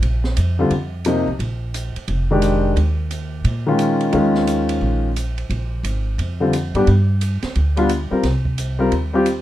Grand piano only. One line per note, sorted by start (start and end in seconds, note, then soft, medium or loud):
0.59 0.70 D3 medium
0.59 0.70 G3 medium
0.59 0.71 C4 soft
0.59 0.71 F4 medium
1.06 1.25 C3 medium
1.06 1.25 F3 soft
1.06 1.26 A#3 soft
1.06 1.26 D#4 medium
2.31 2.75 D#3 medium
2.31 2.75 G#3 medium
2.31 2.75 D4 medium
2.31 2.76 G4 medium
3.66 4.11 D#3 medium
3.66 4.11 G#3 soft
3.66 4.12 C#4 medium
3.66 4.12 F4 medium
4.12 5.08 D#3 medium
4.12 5.08 G#3 medium
4.12 5.09 C#4 medium
4.12 5.09 F4 medium
6.40 6.52 D3 medium
6.40 6.52 G3 medium
6.40 6.52 C4 soft
6.40 6.52 F4 medium
6.75 6.86 G3 medium
6.75 6.86 B3 medium
6.75 6.87 D4 medium
6.75 6.87 G4 medium
7.77 7.88 G3 medium
7.77 7.89 B3 medium
7.77 7.89 D4 medium
7.77 7.89 F4 medium
8.11 8.22 G3 medium
8.11 8.23 C4 soft
8.11 8.23 F4 soft
8.11 8.23 A#4 medium
8.79 8.90 G3 medium
8.79 8.91 C4 medium
8.79 8.91 F4 medium
8.79 8.91 A#4 medium
9.13 9.25 G3 medium
9.13 9.25 C4 medium
9.13 9.26 F4 medium
9.13 9.26 G4 medium